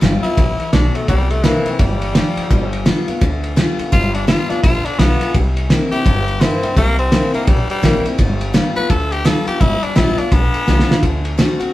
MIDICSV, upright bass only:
0, 0, Header, 1, 3, 480
1, 0, Start_track
1, 0, Tempo, 355240
1, 1466, Time_signature, 4, 2, 24, 8
1, 15854, End_track
2, 0, Start_track
2, 0, Title_t, "Upright bass"
2, 0, Program_c, 0, 32
2, 19, Note_on_c, 0, 31, 84
2, 275, Note_off_c, 0, 31, 0
2, 505, Note_on_c, 0, 33, 85
2, 758, Note_off_c, 0, 33, 0
2, 982, Note_on_c, 0, 35, 86
2, 1236, Note_off_c, 0, 35, 0
2, 1460, Note_on_c, 0, 36, 87
2, 2006, Note_off_c, 0, 36, 0
2, 2426, Note_on_c, 0, 31, 87
2, 2970, Note_off_c, 0, 31, 0
2, 3381, Note_on_c, 0, 31, 97
2, 3927, Note_off_c, 0, 31, 0
2, 4344, Note_on_c, 0, 38, 85
2, 4888, Note_off_c, 0, 38, 0
2, 5300, Note_on_c, 0, 31, 90
2, 5846, Note_off_c, 0, 31, 0
2, 6265, Note_on_c, 0, 33, 84
2, 6518, Note_off_c, 0, 33, 0
2, 6734, Note_on_c, 0, 35, 93
2, 6991, Note_off_c, 0, 35, 0
2, 7220, Note_on_c, 0, 36, 101
2, 7765, Note_off_c, 0, 36, 0
2, 8183, Note_on_c, 0, 31, 83
2, 8727, Note_off_c, 0, 31, 0
2, 9141, Note_on_c, 0, 36, 97
2, 9686, Note_off_c, 0, 36, 0
2, 10100, Note_on_c, 0, 34, 84
2, 10354, Note_off_c, 0, 34, 0
2, 10574, Note_on_c, 0, 33, 94
2, 10831, Note_off_c, 0, 33, 0
2, 11059, Note_on_c, 0, 31, 99
2, 11604, Note_off_c, 0, 31, 0
2, 12023, Note_on_c, 0, 38, 77
2, 12566, Note_off_c, 0, 38, 0
2, 12981, Note_on_c, 0, 31, 99
2, 13189, Note_off_c, 0, 31, 0
2, 13464, Note_on_c, 0, 33, 91
2, 13716, Note_off_c, 0, 33, 0
2, 13941, Note_on_c, 0, 35, 79
2, 14194, Note_off_c, 0, 35, 0
2, 14426, Note_on_c, 0, 36, 86
2, 14677, Note_off_c, 0, 36, 0
2, 14899, Note_on_c, 0, 38, 89
2, 15445, Note_off_c, 0, 38, 0
2, 15854, End_track
3, 0, Start_track
3, 0, Title_t, "Muted upright bass strokes"
3, 318, Note_on_c, 9, 29, 64
3, 453, Note_off_c, 9, 29, 0
3, 797, Note_on_c, 9, 29, 71
3, 933, Note_off_c, 9, 29, 0
3, 2237, Note_on_c, 9, 29, 65
3, 2372, Note_off_c, 9, 29, 0
3, 3200, Note_on_c, 9, 29, 77
3, 3335, Note_off_c, 9, 29, 0
3, 4159, Note_on_c, 9, 29, 66
3, 4295, Note_off_c, 9, 29, 0
3, 5119, Note_on_c, 9, 29, 81
3, 5255, Note_off_c, 9, 29, 0
3, 6082, Note_on_c, 9, 29, 71
3, 6217, Note_off_c, 9, 29, 0
3, 6554, Note_on_c, 9, 29, 71
3, 6689, Note_off_c, 9, 29, 0
3, 7033, Note_on_c, 9, 29, 75
3, 7168, Note_off_c, 9, 29, 0
3, 7996, Note_on_c, 9, 29, 68
3, 8131, Note_off_c, 9, 29, 0
3, 8960, Note_on_c, 9, 29, 77
3, 9095, Note_off_c, 9, 29, 0
3, 9922, Note_on_c, 9, 29, 66
3, 10058, Note_off_c, 9, 29, 0
3, 10399, Note_on_c, 9, 29, 77
3, 10534, Note_off_c, 9, 29, 0
3, 10875, Note_on_c, 9, 29, 75
3, 11010, Note_off_c, 9, 29, 0
3, 11840, Note_on_c, 9, 29, 69
3, 11976, Note_off_c, 9, 29, 0
3, 12796, Note_on_c, 9, 29, 76
3, 12931, Note_off_c, 9, 29, 0
3, 13278, Note_on_c, 9, 29, 67
3, 13413, Note_off_c, 9, 29, 0
3, 13764, Note_on_c, 9, 29, 68
3, 13899, Note_off_c, 9, 29, 0
3, 15681, Note_on_c, 9, 29, 70
3, 15816, Note_off_c, 9, 29, 0
3, 15854, End_track
0, 0, End_of_file